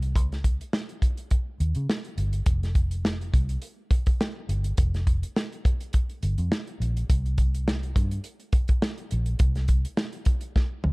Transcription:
Already playing: fingered electric bass C2
0.02 closed hi-hat
0.16 fingered electric bass C#2, kick, closed hi-hat
0.32 snare, closed hi-hat
0.44 kick, closed hi-hat
0.61 closed hi-hat
0.73 snare
0.89 closed hi-hat
1.02 kick, closed hi-hat
1.17 closed hi-hat
1.31 kick, closed hi-hat
1.60 fingered electric bass D#2, closed hi-hat
1.75 fingered electric bass C#3, closed hi-hat
1.90 snare
2.04 closed hi-hat
2.17 fingered electric bass G1, closed hi-hat
2.33 closed hi-hat
2.46 fingered electric bass F1, kick, closed hi-hat
2.63 snare, closed hi-hat
2.75 kick, closed hi-hat
2.91 closed hi-hat
3.05 snare
3.21 closed hi-hat
3.34 fingered electric bass C2, kick, closed hi-hat
3.49 closed hi-hat
3.62 closed hi-hat
3.91 kick, closed hi-hat
4.06 kick, closed hi-hat
4.21 snare
4.49 fingered electric bass G1, closed hi-hat
4.64 closed hi-hat
4.78 fingered electric bass F1, kick, closed hi-hat
4.94 snare, closed hi-hat
5.07 kick, closed hi-hat
5.23 closed hi-hat
5.36 snare
5.52 closed hi-hat
5.65 kick, closed hi-hat
5.81 closed hi-hat
5.93 kick, closed hi-hat
6.09 closed hi-hat
6.23 fingered electric bass G1, closed hi-hat
6.38 fingered electric bass F2, closed hi-hat
6.52 snare
6.67 closed hi-hat
6.80 fingered electric bass A#1, closed hi-hat
6.97 closed hi-hat
7.10 fingered electric bass C2, kick, closed hi-hat
7.26 closed hi-hat
7.38 kick, closed hi-hat
7.54 closed hi-hat
7.68 snare
7.83 closed hi-hat
7.96 fingered electric bass G2, kick, closed hi-hat
8.11 closed hi-hat
8.24 closed hi-hat
8.40 closed hi-hat
8.53 kick, closed hi-hat
8.68 kick, closed hi-hat
8.82 snare
8.98 closed hi-hat
9.11 fingered electric bass A#1, closed hi-hat
9.26 closed hi-hat
9.39 fingered electric bass C2, kick, closed hi-hat
9.55 snare, closed hi-hat
9.68 kick, closed hi-hat
9.85 closed hi-hat
9.97 snare
10.12 closed hi-hat
10.25 kick, closed hi-hat
10.41 closed hi-hat
10.56 kick, snare
10.84 fingered electric bass D2, high tom

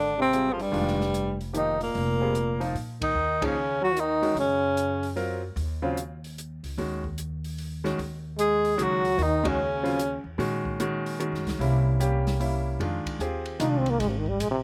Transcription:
Already playing: upright bass G#1, trombone D3, tenor saxophone D4
0.18 trombone C3, tenor saxophone C4
0.33 grand piano G3 C4 F4 G#4, closed hi-hat
0.51 trombone F2, tenor saxophone F3
0.59 trombone G2, tenor saxophone G3, open hi-hat
0.72 upright bass F1, grand piano D#3 G#3 D4 F4, open hi-hat
0.87 snare
1.01 snare
1.14 closed hi-hat
1.41 open hi-hat
1.53 trombone D#3, grand piano F3 A#3 D#4 G4, tenor saxophone D#4, closed hi-hat
1.80 trombone A#2, tenor saxophone A#3, open hi-hat
1.95 upright bass F1, open hi-hat
2.21 grand piano G3 C4 F4 G#4
2.35 closed hi-hat
2.60 grand piano F3 A#3 D#4 F4, open hi-hat
2.75 upright bass A#2, open hi-hat
3.01 trombone D#3, tenor saxophone D#4, kick, ride
3.15 upright bass D#2
3.41 trombone C#3, grand piano F3 A#3 D#4 G#4, tenor saxophone C#4, kick, ride
3.81 trombone F#3, tenor saxophone F#4
3.95 trombone D#3, closed hi-hat
4.00 tenor saxophone D#4
4.22 grand piano D#3 G#3 C#4 F#4, open hi-hat
4.35 upright bass F#2, trombone C#3, open hi-hat
4.40 tenor saxophone C#4
4.77 closed hi-hat
5.03 open hi-hat
5.16 grand piano F#3 C4 F4 A#4, open hi-hat
5.56 upright bass D#2, open hi-hat
5.82 grand piano C#3 F#3 C4 F4
5.97 closed hi-hat
6.24 open hi-hat
6.38 closed hi-hat
6.63 upright bass C#2, open hi-hat
6.78 upright bass D#2, grand piano D#3 G#3 C#4 F#4, open hi-hat
7.04 kick
7.18 closed hi-hat
7.44 open hi-hat
7.58 open hi-hat
7.84 grand piano D#3 G#3 C#4 F#4, snare
7.98 upright bass D#2, open hi-hat
8.37 trombone G#3, tenor saxophone G#4, closed hi-hat
8.65 open hi-hat
8.78 upright bass C#2, grand piano D#3 G#3 C#4 F#4, trombone F#3, closed hi-hat
8.83 tenor saxophone F#4
9.05 open hi-hat
9.18 upright bass D#2, trombone D#3, open hi-hat
9.23 tenor saxophone D#4
9.43 trombone C#3, grand piano D#3 G#3 C#4 F#4, kick, ride
9.48 tenor saxophone C#4
9.83 grand piano C#3 F#3 C4 F4, open hi-hat
9.99 closed hi-hat
10.24 upright bass E2
10.38 upright bass A#2, grand piano D#3 G#3 C#4 F#4, open hi-hat
10.65 kick
10.80 grand piano D#3 G#3 C#4 F#4, closed hi-hat
11.06 open hi-hat
11.20 grand piano D#3 G#3 C#4 F#4, closed hi-hat
11.32 upright bass F#2, snare
11.45 upright bass C#2, snare, open hi-hat
11.59 upright bass C2, grand piano G3 A#3 C#4 E4, open hi-hat
12.00 grand piano G3 A#3 C#4 G4, closed hi-hat
12.27 snare, open hi-hat
12.40 grand piano G3 A#3 C#4 E4, open hi-hat
12.79 upright bass F2, grand piano D#3 G#3 D4 F4, ride
13.06 muted upright bass stroke, kick, ride
13.19 upright bass D#2, grand piano C4 F4 G4 G#4, hi-hat pedal
13.46 ride
13.59 upright bass C2, grand piano D#3 G#3 D4 F4, trombone D#4, hi-hat pedal, ride
13.70 trombone D4
13.78 trombone C4
13.86 ride
13.90 trombone A#3
14.00 upright bass G#1, trombone G#3, snare, ride
14.09 trombone C3
14.18 trombone D#3
14.26 trombone G3, kick
14.40 upright bass A#1, trombone G#3, hi-hat pedal, ride
14.51 trombone C3

